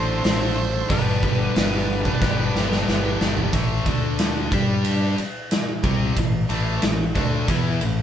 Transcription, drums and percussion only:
0, 0, Header, 1, 2, 480
1, 0, Start_track
1, 0, Tempo, 658617
1, 660, Time_signature, 4, 2, 24, 8
1, 5847, End_track
2, 0, Start_track
2, 0, Title_t, "Drums"
2, 176, Note_on_c, 9, 46, 59
2, 182, Note_on_c, 9, 38, 112
2, 249, Note_off_c, 9, 46, 0
2, 255, Note_off_c, 9, 38, 0
2, 656, Note_on_c, 9, 36, 114
2, 657, Note_on_c, 9, 46, 55
2, 729, Note_off_c, 9, 36, 0
2, 730, Note_off_c, 9, 46, 0
2, 896, Note_on_c, 9, 36, 79
2, 969, Note_off_c, 9, 36, 0
2, 1134, Note_on_c, 9, 46, 59
2, 1141, Note_on_c, 9, 38, 114
2, 1207, Note_off_c, 9, 46, 0
2, 1214, Note_off_c, 9, 38, 0
2, 1496, Note_on_c, 9, 36, 74
2, 1569, Note_off_c, 9, 36, 0
2, 1615, Note_on_c, 9, 36, 103
2, 1622, Note_on_c, 9, 38, 58
2, 1688, Note_off_c, 9, 36, 0
2, 1695, Note_off_c, 9, 38, 0
2, 1861, Note_on_c, 9, 38, 63
2, 1934, Note_off_c, 9, 38, 0
2, 1982, Note_on_c, 9, 38, 65
2, 2055, Note_off_c, 9, 38, 0
2, 2100, Note_on_c, 9, 38, 85
2, 2173, Note_off_c, 9, 38, 0
2, 2340, Note_on_c, 9, 38, 87
2, 2413, Note_off_c, 9, 38, 0
2, 2453, Note_on_c, 9, 43, 85
2, 2526, Note_off_c, 9, 43, 0
2, 2574, Note_on_c, 9, 36, 102
2, 2575, Note_on_c, 9, 51, 92
2, 2647, Note_off_c, 9, 36, 0
2, 2648, Note_off_c, 9, 51, 0
2, 2813, Note_on_c, 9, 36, 92
2, 2813, Note_on_c, 9, 51, 67
2, 2886, Note_off_c, 9, 36, 0
2, 2886, Note_off_c, 9, 51, 0
2, 3051, Note_on_c, 9, 51, 90
2, 3058, Note_on_c, 9, 38, 106
2, 3124, Note_off_c, 9, 51, 0
2, 3130, Note_off_c, 9, 38, 0
2, 3293, Note_on_c, 9, 36, 98
2, 3295, Note_on_c, 9, 51, 58
2, 3366, Note_off_c, 9, 36, 0
2, 3368, Note_off_c, 9, 51, 0
2, 3531, Note_on_c, 9, 51, 85
2, 3604, Note_off_c, 9, 51, 0
2, 3776, Note_on_c, 9, 51, 57
2, 3849, Note_off_c, 9, 51, 0
2, 4015, Note_on_c, 9, 51, 84
2, 4021, Note_on_c, 9, 38, 104
2, 4088, Note_off_c, 9, 51, 0
2, 4094, Note_off_c, 9, 38, 0
2, 4254, Note_on_c, 9, 36, 100
2, 4254, Note_on_c, 9, 51, 59
2, 4327, Note_off_c, 9, 36, 0
2, 4327, Note_off_c, 9, 51, 0
2, 4494, Note_on_c, 9, 36, 88
2, 4495, Note_on_c, 9, 51, 83
2, 4567, Note_off_c, 9, 36, 0
2, 4568, Note_off_c, 9, 51, 0
2, 4734, Note_on_c, 9, 51, 69
2, 4807, Note_off_c, 9, 51, 0
2, 4970, Note_on_c, 9, 51, 91
2, 4977, Note_on_c, 9, 38, 109
2, 5043, Note_off_c, 9, 51, 0
2, 5049, Note_off_c, 9, 38, 0
2, 5214, Note_on_c, 9, 36, 93
2, 5214, Note_on_c, 9, 51, 65
2, 5286, Note_off_c, 9, 51, 0
2, 5287, Note_off_c, 9, 36, 0
2, 5452, Note_on_c, 9, 51, 93
2, 5454, Note_on_c, 9, 36, 93
2, 5525, Note_off_c, 9, 51, 0
2, 5527, Note_off_c, 9, 36, 0
2, 5692, Note_on_c, 9, 51, 65
2, 5765, Note_off_c, 9, 51, 0
2, 5847, End_track
0, 0, End_of_file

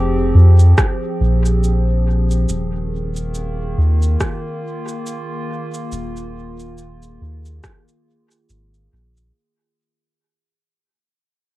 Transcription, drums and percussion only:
0, 0, Header, 1, 2, 480
1, 0, Start_track
1, 0, Tempo, 857143
1, 1397, Time_signature, 4, 2, 24, 8
1, 6477, End_track
2, 0, Start_track
2, 0, Title_t, "Drums"
2, 333, Note_on_c, 9, 69, 40
2, 389, Note_off_c, 9, 69, 0
2, 436, Note_on_c, 9, 37, 87
2, 436, Note_on_c, 9, 69, 50
2, 438, Note_on_c, 9, 36, 104
2, 492, Note_off_c, 9, 37, 0
2, 492, Note_off_c, 9, 69, 0
2, 494, Note_off_c, 9, 36, 0
2, 815, Note_on_c, 9, 69, 41
2, 871, Note_off_c, 9, 69, 0
2, 917, Note_on_c, 9, 69, 51
2, 973, Note_off_c, 9, 69, 0
2, 1295, Note_on_c, 9, 69, 41
2, 1351, Note_off_c, 9, 69, 0
2, 1395, Note_on_c, 9, 69, 51
2, 1451, Note_off_c, 9, 69, 0
2, 1773, Note_on_c, 9, 69, 41
2, 1829, Note_off_c, 9, 69, 0
2, 1874, Note_on_c, 9, 69, 53
2, 1930, Note_off_c, 9, 69, 0
2, 2253, Note_on_c, 9, 69, 40
2, 2309, Note_off_c, 9, 69, 0
2, 2355, Note_on_c, 9, 37, 87
2, 2355, Note_on_c, 9, 69, 52
2, 2356, Note_on_c, 9, 36, 102
2, 2411, Note_off_c, 9, 37, 0
2, 2411, Note_off_c, 9, 69, 0
2, 2412, Note_off_c, 9, 36, 0
2, 2734, Note_on_c, 9, 69, 42
2, 2790, Note_off_c, 9, 69, 0
2, 2836, Note_on_c, 9, 69, 52
2, 2892, Note_off_c, 9, 69, 0
2, 3214, Note_on_c, 9, 69, 43
2, 3270, Note_off_c, 9, 69, 0
2, 3315, Note_on_c, 9, 69, 54
2, 3371, Note_off_c, 9, 69, 0
2, 3453, Note_on_c, 9, 69, 30
2, 3509, Note_off_c, 9, 69, 0
2, 3693, Note_on_c, 9, 69, 42
2, 3749, Note_off_c, 9, 69, 0
2, 3795, Note_on_c, 9, 69, 56
2, 3851, Note_off_c, 9, 69, 0
2, 3933, Note_on_c, 9, 69, 30
2, 3989, Note_off_c, 9, 69, 0
2, 4174, Note_on_c, 9, 69, 44
2, 4230, Note_off_c, 9, 69, 0
2, 4276, Note_on_c, 9, 37, 90
2, 4276, Note_on_c, 9, 69, 53
2, 4278, Note_on_c, 9, 36, 101
2, 4332, Note_off_c, 9, 37, 0
2, 4332, Note_off_c, 9, 69, 0
2, 4334, Note_off_c, 9, 36, 0
2, 4415, Note_on_c, 9, 69, 31
2, 4471, Note_off_c, 9, 69, 0
2, 4653, Note_on_c, 9, 69, 44
2, 4709, Note_off_c, 9, 69, 0
2, 4756, Note_on_c, 9, 69, 55
2, 4812, Note_off_c, 9, 69, 0
2, 4895, Note_on_c, 9, 69, 30
2, 4951, Note_off_c, 9, 69, 0
2, 5135, Note_on_c, 9, 69, 44
2, 5191, Note_off_c, 9, 69, 0
2, 6477, End_track
0, 0, End_of_file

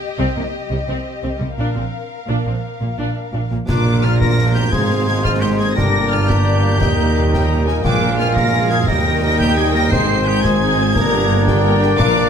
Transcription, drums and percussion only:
0, 0, Header, 1, 2, 480
1, 0, Start_track
1, 0, Tempo, 349854
1, 2166, Time_signature, 12, 3, 24, 8
1, 5539, Tempo, 345821
1, 16998, End_track
2, 0, Start_track
2, 0, Title_t, "Drums"
2, 5058, Note_on_c, 9, 35, 78
2, 5058, Note_on_c, 9, 38, 67
2, 5058, Note_on_c, 9, 49, 47
2, 5195, Note_off_c, 9, 35, 0
2, 5195, Note_off_c, 9, 38, 0
2, 5195, Note_off_c, 9, 49, 0
2, 5540, Note_on_c, 9, 38, 44
2, 5679, Note_off_c, 9, 38, 0
2, 5783, Note_on_c, 9, 35, 73
2, 5783, Note_on_c, 9, 38, 54
2, 5921, Note_off_c, 9, 35, 0
2, 5921, Note_off_c, 9, 38, 0
2, 6497, Note_on_c, 9, 35, 68
2, 6497, Note_on_c, 9, 38, 63
2, 6636, Note_off_c, 9, 35, 0
2, 6636, Note_off_c, 9, 38, 0
2, 7222, Note_on_c, 9, 35, 61
2, 7222, Note_on_c, 9, 38, 49
2, 7361, Note_off_c, 9, 35, 0
2, 7361, Note_off_c, 9, 38, 0
2, 7961, Note_on_c, 9, 35, 79
2, 7961, Note_on_c, 9, 38, 68
2, 8099, Note_off_c, 9, 35, 0
2, 8099, Note_off_c, 9, 38, 0
2, 8677, Note_on_c, 9, 35, 67
2, 8677, Note_on_c, 9, 38, 63
2, 8816, Note_off_c, 9, 35, 0
2, 8816, Note_off_c, 9, 38, 0
2, 9393, Note_on_c, 9, 35, 78
2, 9393, Note_on_c, 9, 38, 74
2, 9532, Note_off_c, 9, 35, 0
2, 9532, Note_off_c, 9, 38, 0
2, 10119, Note_on_c, 9, 35, 62
2, 10119, Note_on_c, 9, 38, 60
2, 10258, Note_off_c, 9, 35, 0
2, 10258, Note_off_c, 9, 38, 0
2, 10595, Note_on_c, 9, 38, 48
2, 10734, Note_off_c, 9, 38, 0
2, 10825, Note_on_c, 9, 35, 74
2, 10825, Note_on_c, 9, 38, 66
2, 10964, Note_off_c, 9, 35, 0
2, 10964, Note_off_c, 9, 38, 0
2, 11310, Note_on_c, 9, 38, 55
2, 11449, Note_off_c, 9, 38, 0
2, 11548, Note_on_c, 9, 35, 70
2, 11548, Note_on_c, 9, 38, 56
2, 11687, Note_off_c, 9, 35, 0
2, 11687, Note_off_c, 9, 38, 0
2, 12261, Note_on_c, 9, 35, 81
2, 12261, Note_on_c, 9, 38, 58
2, 12400, Note_off_c, 9, 35, 0
2, 12400, Note_off_c, 9, 38, 0
2, 12982, Note_on_c, 9, 35, 57
2, 12982, Note_on_c, 9, 38, 46
2, 13121, Note_off_c, 9, 35, 0
2, 13121, Note_off_c, 9, 38, 0
2, 13709, Note_on_c, 9, 35, 74
2, 13709, Note_on_c, 9, 38, 65
2, 13848, Note_off_c, 9, 35, 0
2, 13848, Note_off_c, 9, 38, 0
2, 14433, Note_on_c, 9, 35, 64
2, 14433, Note_on_c, 9, 38, 62
2, 14572, Note_off_c, 9, 35, 0
2, 14572, Note_off_c, 9, 38, 0
2, 15146, Note_on_c, 9, 35, 80
2, 15146, Note_on_c, 9, 38, 79
2, 15285, Note_off_c, 9, 35, 0
2, 15285, Note_off_c, 9, 38, 0
2, 15861, Note_on_c, 9, 35, 61
2, 15861, Note_on_c, 9, 38, 67
2, 16000, Note_off_c, 9, 35, 0
2, 16000, Note_off_c, 9, 38, 0
2, 16345, Note_on_c, 9, 38, 45
2, 16484, Note_off_c, 9, 38, 0
2, 16582, Note_on_c, 9, 35, 80
2, 16582, Note_on_c, 9, 38, 73
2, 16582, Note_on_c, 9, 49, 31
2, 16721, Note_off_c, 9, 35, 0
2, 16721, Note_off_c, 9, 38, 0
2, 16721, Note_off_c, 9, 49, 0
2, 16998, End_track
0, 0, End_of_file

